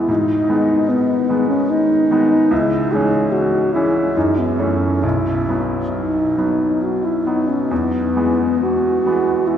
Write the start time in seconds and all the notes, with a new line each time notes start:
Already playing: E3 G#3 B3 E4
0.09 G#2 D#4
0.49 D#3 G#3 B3
0.89 B3
1.29 D#3 G#3 B3
1.48 C#4
1.71 D#4
2.11 D#3 G#3 B3
2.51 C#2 E4
2.92 E3 G#3 C#4 G#4
3.32 F#4
3.73 E3 G#3 C#4 E4
4.17 F#2 D#4
4.39 B3
4.59 E3 A3 C#4
5.03 B1 E4
5.48 F#3 B3
5.95 D#4
6.38 F#3 B3
6.83 F#4
7.05 E4
7.26 F#3 B3 D#4
7.49 C#4
7.71 E2 B3
8.17 E3 G#3 B3
8.63 F#4
9.06 E3 G#3 B3
9.47 E4